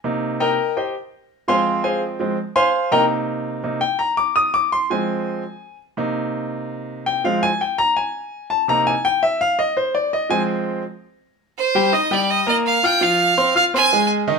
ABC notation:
X:1
M:4/4
L:1/8
Q:1/4=166
K:Cm
V:1 name="Fiddle"
z8 | z8 | z8 | z8 |
z8 | z8 | z8 | z8 |
c2 e d e e f g | f3 f a2 z2 |]
V:2 name="Grand piano"
z2 [Begb]2 [Gceg] z3 | [cfac']2 [Acfa] z3 [cfac']2 | [Begb] z4 g b d' | e' d' c' a4- a |
z6 z g | f a g b a3 =a | b a g =e f _e c d | e a z6 |
z [G,Gg] [Eee'] [G,Gg]2 [B,Bb]2 [Fff'] | [F,Ff]2 [Ccc'] [Fff'] [Ccc'] [A,Aa]2 [E,Ee] |]
V:3 name="Grand piano"
[C,B,E]3 z4 z | [F,A,C]4 [F,A,C] z3 | [C,B,E]4 [C,B,E] z3 | z3 [F,A,C]3 z2 |
z [C,B,E]6- [C,B,E] | [F,A,C] z6 z | [C,B,E] z6 z | z [F,A,C]3 z4 |
z8 | z8 |]